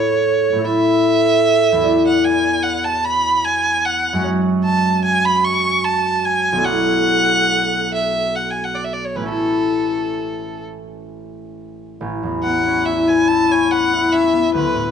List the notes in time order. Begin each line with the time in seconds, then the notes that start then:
Already playing: A2 A3 E4 A4 B4 C#5
0.52 A2 A3
0.58 E4 A4
0.64 B4 E5
1.72 E2 B3
1.78 E4 F#4
1.83 D5
2.07 F#5
2.25 G#5
2.63 F#5
2.84 A5
3.05 B5
3.44 G#5
3.85 F#5
4.13 F#2 G#3
4.18 C#4 F#4
4.24 C#5
4.64 A5
5.05 G#5
5.25 B5
5.45 C#6
5.85 A5
6.25 G#5
6.52 B1 A3
6.58 D4 E4
6.64 C#5 F#5
7.94 E5
8.35 F#5
8.50 G#5
8.64 F#5
8.75 D5
8.84 E5
8.93 D5
9.05 C#5
9.15 A1 A3 B4
9.21 C#4 E4
9.26 A4 B4
12.01 A1
12.23 E2
12.43 B3 F#5
12.66 C#4
12.85 E4 E5
13.08 B4 G#5
13.28 E4 A5
13.51 C#5 G#5
13.71 B4 F#5
13.93 E4
14.12 C#4 E5
14.33 B3
14.54 D2 B4
14.75 A2